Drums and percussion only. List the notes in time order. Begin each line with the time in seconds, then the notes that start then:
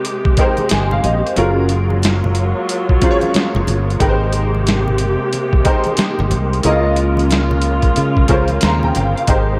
0.05 closed hi-hat
0.25 kick
0.37 kick, closed hi-hat, muted conga
0.57 closed hi-hat, high conga
0.69 snare, closed hi-hat, high conga
0.91 low conga
1.04 closed hi-hat, muted conga, high conga, low conga
1.27 closed hi-hat
1.36 closed hi-hat, muted conga
1.69 closed hi-hat, muted conga
1.90 high conga
2.02 snare, closed hi-hat, muted conga
2.24 high conga, low conga
2.35 closed hi-hat
2.69 closed hi-hat
2.89 kick
3.01 kick, closed hi-hat, muted conga
3.21 closed hi-hat, high conga
3.34 snare, closed hi-hat, muted conga, high conga
3.55 low conga
3.67 closed hi-hat, muted conga, high conga, low conga
3.90 closed hi-hat
4.00 kick, closed hi-hat, muted conga
4.33 closed hi-hat, muted conga
4.55 high conga
4.66 snare, closed hi-hat, muted conga
4.88 high conga, low conga
4.98 closed hi-hat, muted conga
5.33 closed hi-hat, muted conga
5.53 kick
5.65 kick, closed hi-hat, muted conga
5.84 closed hi-hat, high conga
5.97 snare, closed hi-hat, muted conga, high conga
6.19 low conga
6.31 closed hi-hat, muted conga, high conga, low conga
6.53 closed hi-hat
6.63 closed hi-hat
6.96 closed hi-hat, muted conga
7.17 closed hi-hat, high conga
7.30 snare, closed hi-hat, muted conga
7.51 high conga, low conga
7.62 closed hi-hat
7.82 kick, closed hi-hat
7.96 closed hi-hat, muted conga
8.17 kick
8.28 kick, closed hi-hat, muted conga
8.48 closed hi-hat, high conga
8.61 snare, closed hi-hat, high conga
8.83 low conga
8.95 closed hi-hat, high conga, low conga
9.17 closed hi-hat
9.27 kick, closed hi-hat, muted conga